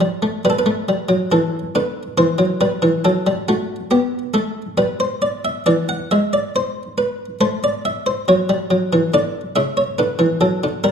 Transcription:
0.00 0.22 G3 medium
0.00 0.43 C5 medium
0.22 0.44 A3 medium
0.45 0.66 G3 medium
0.45 0.52 B4 medium
0.50 0.58 A4 medium
0.59 1.30 B4 medium
0.66 0.88 A3 medium
0.89 1.10 G3 medium
1.09 1.30 F#3 medium
1.32 1.59 E3 medium
1.32 1.59 A4 medium
1.75 2.02 D3 medium
1.75 2.02 B4 medium
2.18 2.39 E3 medium
2.18 2.45 C5 medium
2.38 2.60 F#3 medium
2.61 2.82 G3 medium
2.61 2.88 B4 medium
2.82 3.04 E3 medium
3.05 3.26 F#3 medium
3.05 3.32 A4 medium
3.27 3.48 G3 medium
3.48 3.75 A3 medium
3.48 3.75 F#4 medium
3.91 4.18 B3 medium
3.91 4.18 G4 medium
4.34 4.62 A3 medium
4.34 4.61 A4 medium
4.78 5.63 G3 medium
4.78 4.99 B4 medium
5.00 5.22 C5 medium
5.22 5.44 D5 medium
5.45 5.66 E5 medium
5.66 5.94 E3 medium
5.66 5.88 D5 medium
5.89 6.10 F#5 medium
6.11 7.38 G#3 medium
6.11 6.32 E5 medium
6.33 6.54 D5 medium
6.56 6.82 C5 medium
6.98 7.25 B4 medium
7.41 8.25 A3 medium
7.41 7.62 C5 medium
7.64 7.84 D5 medium
7.85 8.06 E5 medium
8.06 8.27 C5 medium
8.28 8.49 F#3 medium
8.28 9.12 C#5 medium
8.49 8.70 G3 medium
8.71 8.91 F#3 medium
8.93 9.13 E3 medium
9.14 9.40 D3 medium
9.14 9.41 D5 medium
9.56 9.83 C#3 medium
9.56 9.77 E5 medium
9.77 9.99 C#5 medium
9.98 10.20 D3 medium
9.98 10.25 B4 medium
10.19 10.41 E3 medium
10.41 10.62 F#3 medium
10.41 10.68 A4 medium
10.64 10.84 D3 medium
10.84 10.91 G3 medium
10.84 10.91 A#4 medium

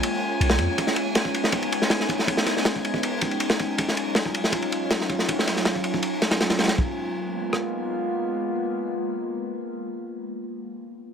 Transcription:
0.00 3.74 G#3 medium
0.00 0.74 A#3 medium
0.00 3.74 C#4 medium
0.00 0.75 F4 medium
0.00 6.79 G#5 medium
0.00 ride medium
0.40 0.60 B1 loud
0.40 ride medium
0.50 snare loud
0.58 0.68 F2 medium
0.58 kick medium
0.58 ride medium
0.78 3.75 B3 medium
0.78 6.74 D#4 medium
0.78 kick loud
0.78 ride medium
0.87 snare soft
0.96 ride medium
1.15 snare loud
1.15 ride medium
1.25 kick loud
1.34 ride medium
1.44 snare medium
1.52 kick loud
1.52 ride medium
1.62 ride soft
1.72 ride medium
1.82 snare soft
1.90 snare loud
1.90 ride medium
2.00 snare soft
2.09 kick medium
2.09 ride medium
2.19 snare soft
2.27 kick loud
2.27 ride medium
2.37 snare medium
2.46 snare soft
2.46 ride medium
2.57 snare soft
2.65 snare loud
2.65 ride medium
2.76 kick medium
2.85 ride medium
2.94 kick medium
3.03 ride medium
3.21 kick medium
3.21 ride medium
3.31 ride soft
3.40 ride medium
3.50 snare loud
3.59 kick medium
3.59 ride medium
3.78 6.75 F#3 medium
3.78 6.75 C#4 medium
3.78 6.75 F4 medium
3.78 kick loud
3.78 ride medium
3.88 snare soft
3.97 ride medium
4.15 snare loud
4.15 ride medium
4.25 kick medium
4.34 ride medium
4.44 snare soft
4.52 kick loud
4.52 ride medium
4.62 ride soft
4.72 ride medium
4.91 snare loud
4.91 ride medium
5.01 snare soft
5.09 kick medium
5.09 ride medium
5.19 snare soft
5.29 kick loud
5.29 ride medium
5.39 snare soft
5.47 snare soft
5.47 ride medium
5.56 snare soft
5.65 snare loud
5.65 ride medium
5.75 kick medium
5.84 ride medium
5.94 kick medium
6.03 ride medium
6.22 snare medium
6.22 ride medium
6.31 snare loud
6.31 ride medium
6.41 snare medium
6.41 ride medium
6.50 snare loud
6.50 ride medium
6.59 snare medium
6.59 ride medium
6.64 snare medium
6.64 ride medium
6.68 snare loud
6.68 ride medium
6.78 10.54 G#3 medium
6.78 10.54 A#3 medium
6.78 10.54 B3 medium
6.78 10.54 F4 medium
6.78 kick loud
7.53 cross-stick medium

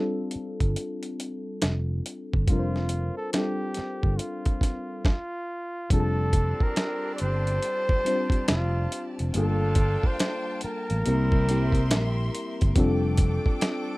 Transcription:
0.00 2.49 G3 medium
0.00 2.49 C4 medium
0.00 2.50 D4 medium
0.00 2.52 F4 medium
0.00 3.38 A4 medium
0.31 closed hi-hat medium
0.36 muted fingered electric bass stroke soft
0.60 0.75 G1 medium
0.60 kick medium
0.60 closed hi-hat soft
0.76 closed hi-hat medium
1.03 closed hi-hat soft
1.20 closed hi-hat medium
1.62 2.00 F1 medium
1.62 snare loud
1.62 closed hi-hat medium
2.06 closed hi-hat medium
2.33 2.48 G1 medium
2.33 kick medium
2.48 3.09 F1 medium
2.48 3.23 G3 medium
2.48 3.24 C4 medium
2.48 3.24 D4 medium
2.48 3.14 F4 medium
2.48 kick loud
2.48 closed hi-hat medium
2.52 3.25 F4 medium
2.52 2.58 A#4 medium
2.59 3.29 C5 medium
2.76 snare soft
2.89 closed hi-hat medium
3.17 3.32 A4 medium
3.33 4.80 G3 medium
3.33 4.81 C4 medium
3.33 4.81 D4 medium
3.33 4.19 G4 medium
3.33 snare medium
3.33 closed hi-hat medium
3.37 4.82 F4 medium
3.37 4.82 A4 medium
3.74 snare soft
3.74 closed hi-hat medium
3.79 muted fingered electric bass stroke soft
4.03 4.17 G1 medium
4.03 kick medium
4.17 5.04 F4 medium
4.17 closed hi-hat medium
4.46 kick medium
4.46 closed hi-hat soft
4.61 kick medium
4.61 snare soft
4.61 closed hi-hat medium
5.05 5.88 F4 medium
5.05 kick loud
5.05 snare medium
5.90 6.52 F1 medium
5.90 8.87 D3 medium
5.90 7.37 G3 medium
5.90 8.87 G3 medium
5.90 8.87 C4 medium
5.90 7.37 C4 medium
5.90 8.87 D4 medium
5.90 7.38 D4 medium
5.90 7.38 F4 medium
5.90 9.30 G4 medium
5.90 6.00 G#4 medium
5.90 6.65 A4 loud
5.90 9.30 D5 medium
5.90 9.30 A5 medium
5.90 kick loud
5.90 closed hi-hat medium
6.00 7.42 A5 medium
6.33 kick medium
6.33 closed hi-hat medium
6.60 7.15 A#4 loud
6.60 kick medium
6.76 snare medium
6.76 closed hi-hat medium
7.15 7.22 D5 medium
7.15 closed hi-hat medium
7.21 7.58 G1 medium
7.21 8.48 C5 loud
7.47 closed hi-hat soft
7.62 closed hi-hat medium
7.89 kick medium
8.05 9.18 G3 medium
8.05 9.18 C4 medium
8.05 9.18 D4 medium
8.05 9.19 F4 medium
8.05 9.19 C5 medium
8.05 snare soft
8.05 closed hi-hat medium
8.30 kick medium
8.30 closed hi-hat soft
8.48 8.86 F1 medium
8.48 9.08 F4 loud
8.48 snare loud
8.48 closed hi-hat medium
8.92 closed hi-hat medium
9.19 9.33 F1 medium
9.19 closed hi-hat soft
9.33 9.95 G1 loud
9.33 10.59 F3 medium
9.33 10.80 G3 medium
9.33 10.59 A#3 medium
9.33 10.81 A#3 medium
9.33 10.59 D4 medium
9.33 10.81 D4 medium
9.33 10.59 F4 medium
9.33 10.82 F4 medium
9.33 10.08 A4 medium
9.33 11.03 F5 medium
9.33 11.03 G5 medium
9.33 11.03 A5 medium
9.33 closed hi-hat medium
9.38 10.82 A4 medium
9.75 kick medium
9.75 closed hi-hat medium
10.03 10.63 C5 loud
10.03 kick medium
10.20 snare loud
10.20 closed hi-hat medium
10.61 12.31 A#4 loud
10.61 muted fingered electric bass stroke soft
10.61 closed hi-hat medium
10.90 11.04 A1 medium
10.90 closed hi-hat soft
11.05 11.92 C2 medium
11.05 12.31 G3 medium
11.05 11.43 G3 medium
11.05 11.43 A#3 medium
11.05 12.31 C4 medium
11.05 11.43 C4 medium
11.05 12.31 E4 medium
11.05 11.44 E4 medium
11.05 12.31 G4 medium
11.05 12.76 A#4 medium
11.05 11.44 A#4 medium
11.05 12.75 E5 medium
11.05 12.76 C6 medium
11.05 closed hi-hat medium
11.32 kick medium
11.47 12.60 G3 medium
11.47 12.61 A#3 medium
11.47 12.61 C4 medium
11.47 12.62 E4 medium
11.47 snare soft
11.47 closed hi-hat medium
11.51 12.62 G4 medium
11.72 kick medium
11.72 closed hi-hat soft
11.91 12.29 A#1 medium
11.91 snare loud
11.91 closed hi-hat medium
12.35 closed hi-hat medium
12.61 12.76 G1 medium
12.61 kick loud
12.61 closed hi-hat soft
12.75 13.38 F1 loud
12.75 13.98 G3 medium
12.75 13.98 A3 medium
12.75 13.98 C4 medium
12.75 13.98 D4 medium
12.75 13.98 F4 medium
12.75 13.98 A4 medium
12.75 13.98 G5 medium
12.75 13.98 D6 medium
12.75 kick loud
12.75 closed hi-hat medium
12.79 13.98 A4 medium
13.17 kick medium
13.17 closed hi-hat medium
13.46 kick medium
13.61 snare loud
13.61 closed hi-hat medium

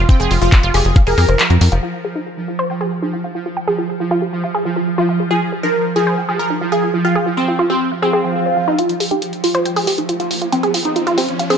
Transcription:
0.00 1.82 F3 medium
0.09 0.30 C4 medium
0.09 0.17 G5 medium
0.09 kick loud
0.09 closed hi-hat medium
0.20 0.28 F1 medium
0.20 0.27 G#4 loud
0.20 closed hi-hat soft
0.31 0.38 F1 loud
0.31 0.38 F4 medium
0.31 open hi-hat loud
0.42 0.49 F1 loud
0.42 0.62 F4 loud
0.42 closed hi-hat soft
0.52 0.60 F4 medium
0.52 kick loud
0.52 clap loud
0.52 closed hi-hat medium
0.63 0.71 F1 medium
0.63 0.74 F4 loud
0.63 closed hi-hat soft
0.74 0.82 F1 loud
0.74 0.82 G4 medium
0.74 0.95 G#4 loud
0.74 open hi-hat loud
0.85 0.93 F1 medium
0.85 closed hi-hat soft
0.96 1.00 F5 medium
0.96 kick loud
0.96 closed hi-hat medium
1.07 1.15 F1 medium
1.07 1.14 G#4 loud
1.07 1.74 A#4 loud
1.07 open hi-hat medium
1.18 1.25 F2 loud
1.18 1.22 G#4 loud
1.18 open hi-hat loud
1.29 1.36 F1 medium
1.29 1.33 C5 medium
1.29 closed hi-hat soft
1.39 clap loud
1.39 closed hi-hat medium
1.50 1.58 F2 medium
1.50 1.55 F4 medium
1.50 closed hi-hat soft
1.61 1.69 F2 loud
1.61 1.69 F4 medium
1.61 open hi-hat loud
1.72 1.80 F1 loud
1.72 1.77 F5 medium
1.72 closed hi-hat soft
1.83 8.77 F3 medium
1.83 1.90 F4 medium
2.05 2.12 G#4 medium
2.15 2.23 D#4 medium
2.48 2.56 F4 medium
2.59 2.67 C5 medium
2.70 2.77 G5 medium
2.81 2.88 G#4 loud
3.02 3.10 D#4 medium
3.13 3.21 F4 medium
3.24 3.29 F5 medium
3.35 3.43 F4 medium
3.46 3.50 F4 medium
3.57 3.64 G5 medium
3.68 3.75 G#4 loud
3.78 3.86 F4 medium
4.00 4.08 F4 medium
4.11 4.21 F4 loud
4.22 4.30 G4 medium
4.44 4.48 F5 medium
4.55 4.62 G#4 loud
4.65 4.75 F4 medium
4.76 4.81 F4 medium
4.98 5.08 F4 loud
5.09 5.17 F5 medium
5.20 5.24 G#4 medium
5.31 5.38 F4 medium
5.31 5.51 G#4 loud
5.52 5.60 G#4 medium
5.63 5.71 D#4 medium
5.63 5.84 A#4 loud
5.96 6.04 F4 medium
5.96 6.24 G#4 medium
6.07 6.14 C5 loud
6.18 6.25 G5 medium
6.29 6.36 G#4 loud
6.39 6.60 A#4 medium
6.50 6.58 D#4 medium
6.61 6.69 F4 medium
6.72 6.93 G#4 loud
6.72 6.77 F5 medium
6.83 6.90 F4 medium
6.94 6.98 F4 medium
7.05 7.25 F4 loud
7.05 7.12 G5 medium
7.16 7.23 G#4 loud
7.26 7.34 F4 medium
7.37 7.58 C4 loud
7.48 7.56 F4 medium
7.59 7.69 F4 loud
7.70 7.91 C4 loud
7.70 7.77 G4 medium
7.92 7.96 F5 medium
7.92 swell medium
8.02 8.70 C4 loud
8.02 8.10 G#4 loud
8.13 8.21 G#4 medium
8.24 8.32 G5 medium
8.46 8.53 C5 medium
8.57 8.67 F5 medium
8.68 8.75 D#4 loud
8.79 11.58 F3 medium
8.79 8.86 F4 medium
8.79 8.99 F4 loud
8.79 closed hi-hat medium
8.79 riser medium
8.89 closed hi-hat soft
9.00 9.08 G#4 medium
9.00 open hi-hat loud
9.11 9.19 D#4 medium
9.11 9.32 G4 loud
9.11 closed hi-hat soft
9.22 closed hi-hat medium
9.33 closed hi-hat soft
9.44 9.51 F4 medium
9.44 9.71 F4 loud
9.44 open hi-hat loud
9.55 9.62 C5 loud
9.55 closed hi-hat soft
9.65 9.73 G5 medium
9.65 closed hi-hat medium
9.76 9.84 G#4 loud
9.76 open hi-hat medium
9.87 10.08 G4 medium
9.87 open hi-hat loud
9.98 10.06 D#4 medium
9.98 closed hi-hat soft
10.09 10.17 F4 medium
10.09 closed hi-hat medium
10.20 10.41 F4 medium
10.20 10.24 F5 medium
10.20 closed hi-hat soft
10.31 10.38 F4 medium
10.31 open hi-hat loud
10.42 10.46 F4 medium
10.42 closed hi-hat soft
10.52 10.73 C4 medium
10.52 10.60 G5 medium
10.52 closed hi-hat medium
10.63 10.71 G#4 loud
10.63 closed hi-hat soft
10.74 10.82 F4 medium
10.74 open hi-hat loud
10.85 11.06 D#4 loud
10.85 closed hi-hat soft
10.96 11.03 F4 medium
10.96 closed hi-hat medium
11.07 11.17 F4 loud
11.07 closed hi-hat soft
11.18 11.38 C4 loud
11.18 11.25 G4 medium
11.18 open hi-hat loud
11.29 closed hi-hat soft
11.39 11.44 F5 medium
11.39 closed hi-hat medium
11.50 11.58 C4 loud
11.50 11.58 G#4 loud
11.50 open hi-hat medium

